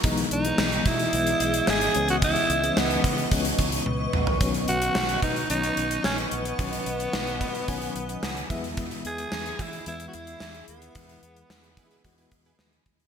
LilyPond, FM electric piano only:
<<
  \new Staff \with { instrumentName = "FM electric piano" } { \time 4/4 \key b \major \tempo 4 = 110 r1 | r1 | r1 | r4. b''16 b''16 gis''8 fis''8 fis''8 e''8 |
r1 | r1 | }
  \new Staff \with { instrumentName = "FM electric piano" } { \clef bass \time 4/4 \key b \major <e gis b dis'>8 r16 <e gis b dis'>4 r16 <e gis b dis''>4. <e gis b cis'>8~ | <e gis b cis'>8 r16 <e gis b cis'>4 r16 <e gis b cis'>4. r8 | <cis dis fis b cis'>4. r8 <dis fis b cis'>4. r8 | <dis fis b cis'>4. r8 <dis fis b cis'>4. <e gis b e'>8~ |
<e gis b e'>4 r4 <e gis b e'>4. r8 | <e gis b e'>4. r8 <e gis b fis'>4. r8 | }
>>